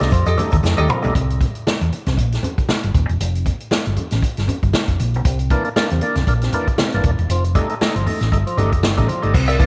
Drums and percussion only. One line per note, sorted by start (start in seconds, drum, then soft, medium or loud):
0.01 snare soft
0.01 closed hi-hat medium
0.10 kick medium
0.10 closed hi-hat medium
0.10 shaker medium
0.26 closed hi-hat medium
0.26 shaker medium
0.38 closed hi-hat medium
0.38 low conga medium
0.38 shaker soft
0.51 kick medium
0.51 closed hi-hat soft
0.51 shaker medium
0.64 snare medium
0.64 high conga medium
0.64 shaker medium
0.77 shaker medium
0.89 mid tom loud
0.89 high conga medium
0.89 shaker medium
1.03 floor tom medium
1.03 shaker soft
1.15 kick loud
1.15 closed hi-hat loud
1.30 closed hi-hat medium
1.41 kick medium
1.41 closed hi-hat medium
1.41 muted conga medium
1.55 closed hi-hat soft
1.67 snare medium
1.67 high conga medium
1.81 closed hi-hat soft
1.92 closed hi-hat medium
1.92 muted conga soft
2.06 snare soft
2.06 closed hi-hat medium
2.06 low conga medium
2.17 kick medium
2.17 closed hi-hat medium
2.32 snare soft
2.32 closed hi-hat medium
2.43 closed hi-hat medium
2.43 muted conga soft
2.43 low conga medium
2.58 kick medium
2.58 closed hi-hat soft
2.69 snare medium
2.69 high conga medium
2.83 closed hi-hat soft
2.94 kick loud
2.94 closed hi-hat medium
2.94 high conga medium
3.09 closed hi-hat soft
3.20 closed hi-hat loud
3.35 closed hi-hat soft
3.46 kick medium
3.46 closed hi-hat medium
3.46 muted conga medium
3.60 closed hi-hat soft
3.71 snare loud
3.71 high conga medium
3.85 closed hi-hat medium
3.96 closed hi-hat medium
3.96 muted conga soft
3.96 low conga medium
4.11 snare soft
4.11 closed hi-hat medium
4.22 kick medium
4.22 closed hi-hat medium
4.37 snare soft
4.37 closed hi-hat soft
4.48 closed hi-hat medium
4.48 muted conga soft
4.48 low conga medium
4.63 kick medium
4.63 closed hi-hat soft
4.73 snare medium
4.73 high conga medium
4.88 kick medium
4.88 closed hi-hat soft
4.99 closed hi-hat medium
4.99 high conga medium
5.14 closed hi-hat soft
5.25 kick medium
5.25 closed hi-hat loud
5.39 closed hi-hat medium
5.50 kick medium
5.50 closed hi-hat medium
5.50 muted conga medium
5.65 closed hi-hat soft
5.76 snare loud
5.76 high conga medium
5.90 closed hi-hat medium
6.01 closed hi-hat medium
6.01 muted conga medium
6.15 snare soft
6.15 closed hi-hat medium
6.15 low conga medium
6.27 kick medium
6.27 closed hi-hat medium
6.42 snare soft
6.42 closed hi-hat medium
6.53 closed hi-hat medium
6.53 low conga medium
6.67 kick medium
6.67 closed hi-hat soft
6.78 snare loud
6.78 high conga medium
6.92 closed hi-hat soft
7.03 kick loud
7.03 closed hi-hat medium
7.03 high conga medium
7.19 closed hi-hat soft
7.30 closed hi-hat loud
7.44 closed hi-hat soft
7.55 kick medium
7.55 closed hi-hat medium
7.55 muted conga medium
7.69 closed hi-hat soft
7.81 snare loud
7.81 high conga medium
7.96 closed hi-hat soft
8.06 open hi-hat medium
8.06 muted conga soft
8.06 low conga medium
8.21 snare soft
8.21 closed hi-hat medium
8.32 kick medium
8.32 closed hi-hat medium
8.47 closed hi-hat medium
8.58 closed hi-hat medium
8.58 low conga medium
8.72 kick medium
8.72 closed hi-hat soft
8.83 snare loud
8.83 high conga medium
8.97 kick medium
8.97 closed hi-hat soft
8.97 high conga medium
9.09 closed hi-hat medium
9.09 high conga medium
9.23 closed hi-hat soft
9.34 kick loud
9.34 crash loud
9.34 shaker loud
9.48 closed hi-hat medium
9.48 shaker medium
9.60 kick medium
9.60 closed hi-hat medium
9.60 muted conga medium